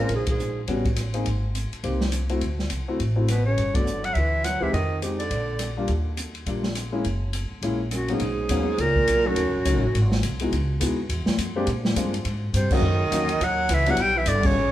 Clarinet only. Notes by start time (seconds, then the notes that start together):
Already playing: A#4
0.15 G#4
0.30 G#4
3.29 B4
3.45 C#5
3.75 D5
4.04 F#5
4.14 E5
4.44 F#5
4.63 E5
4.73 D#5
5.19 D5
7.95 F#4
8.13 G#4
8.80 A#4
9.27 F#4
12.56 C5
12.74 D#5
13.43 F#5
13.74 E5
13.90 F#5
14.02 G5
14.18 E5
14.28 D5
14.46 C#5